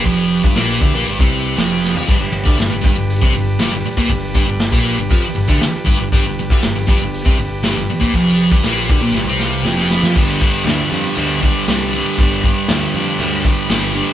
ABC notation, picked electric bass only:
X:1
M:4/4
L:1/16
Q:1/4=119
K:Gmix
V:1 name="Picked electric bass" clef=bass
F,,,3 G,,, _B,,,2 D,, B,,, G,,, C,,3 F,,,3 F,, | G,,, G,,, G,,, D,, G,,, G,,, G,,, G,,,2 C,, G,,,2 G,,, G,,, z _B,,, | G,,,2 G,,, G,,,2 _B,,,2 G,,, F,, z G,,, D,, z2 G,,, G,,, | G,,, G,,, G,,, D,, G,,, G,,, G,,, G,,,2 C,, G,,,2 G,,, G,,, z _B,,, |
F,,,3 G,,, _B,,,2 D,, B,,, G,,, C,,3 F,,,3 F,, | G,,,4 D,,2 F,,2 D,,4 C,,4 | G,,,4 D,,2 F,,2 D,,4 G,,,4 |]